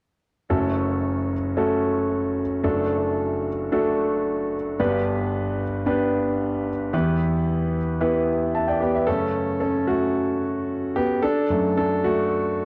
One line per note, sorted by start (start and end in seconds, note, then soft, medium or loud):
0.50 2.61 F#1 medium
0.50 2.60 F#2 medium
0.50 1.33 A3 medium
0.50 1.33 C#4 medium
0.50 1.33 F#4 medium
0.50 1.33 A4 medium
1.57 2.40 A3 medium
1.57 2.40 C#4 medium
1.57 2.40 F#4 medium
1.57 2.41 A4 medium
2.64 4.75 F#1 medium
2.64 4.75 F#2 medium
2.64 3.47 A3 medium
2.64 3.47 D4 medium
2.64 3.48 F#4 medium
2.64 3.47 A4 medium
3.72 4.55 A3 medium
3.72 4.55 D4 medium
3.72 4.55 F#4 medium
3.72 4.55 A4 medium
4.79 6.90 G1 medium
4.79 6.90 G2 medium
4.79 5.62 B3 medium
4.79 5.62 D4 medium
4.79 5.63 G4 medium
4.79 5.63 B4 medium
5.86 6.70 B3 medium
5.86 6.69 D4 medium
5.86 6.70 G4 medium
5.86 6.70 B4 medium
6.93 9.04 E2 medium
6.93 9.04 E3 medium
6.93 7.77 B3 medium
6.93 7.77 E4 medium
6.93 7.77 G4 medium
6.93 7.77 B4 medium
8.01 8.81 B3 medium
8.01 8.84 E4 medium
8.01 8.79 G4 medium
8.01 8.28 B4 medium
8.55 8.68 E5 soft
8.55 8.67 A5 soft
8.68 8.94 D5 soft
8.68 8.93 G5 medium
8.81 9.07 B3 soft
8.81 9.06 G4 medium
8.95 9.21 B4 soft
8.95 9.20 E5 medium
9.07 11.18 F#2 soft
9.07 11.18 C#3 soft
9.07 9.87 A3 soft
9.07 9.58 C#4 medium
9.07 9.59 A4 medium
9.60 9.87 C#4 medium
9.60 9.89 A4 medium
9.87 10.92 A3 medium
9.87 10.99 F#4 medium
10.96 11.03 B3 medium
10.96 11.02 G4 medium
11.23 11.73 D4 medium
11.23 11.76 A4 medium
11.50 12.26 F#2 soft
11.50 12.26 F#3 soft
11.50 12.04 A3 soft
11.77 12.02 D4 medium
11.77 12.02 A4 medium
12.04 12.65 A3 medium
12.04 12.65 F#4 medium